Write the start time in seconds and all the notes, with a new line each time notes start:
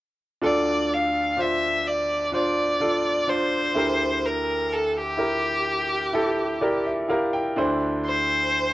0.42 D2 D3 D4 F4 A4 D5
0.93 F5
1.37 D4 F4 C5 E5
1.87 D5
2.32 D4 F4 C5 D5
2.80 D4 F4 A4
3.27 D4 F4 C5
3.75 D2 D3 E4 G4 A#4
4.25 A#4
4.73 A4
4.97 G4
5.17 E4 G4 A#4
6.13 E4 G4 A4
6.61 E4 G4 A#4 D5
6.86 E5
7.08 E4 G4 A#4 F5
7.33 G5
7.56 D2 D3 D4 E4 C5
8.06 C5